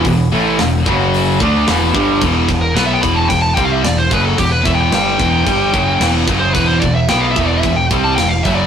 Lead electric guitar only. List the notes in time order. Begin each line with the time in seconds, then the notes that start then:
2.62 A#4
2.76 B4
2.86 E5
2.93 G5
3.01 B5
3.14 A5
3.29 G5
3.42 A5
3.54 G5
3.65 F5
3.73 E5
3.84 D5
3.98 C5
4.13 B4
4.24 A4
4.39 G4
4.52 B4
4.65 E5
4.74 G5
4.81 G5
6.40 C5
6.54 B4
6.68 C5
6.80 D5
6.95 E5
7.09 G5
7.21 F5
7.31 E5
7.47 D5
7.60 E5
7.76 G5
8.04 A5
8.16 G5
8.29 F5
8.44 E5
8.55 D5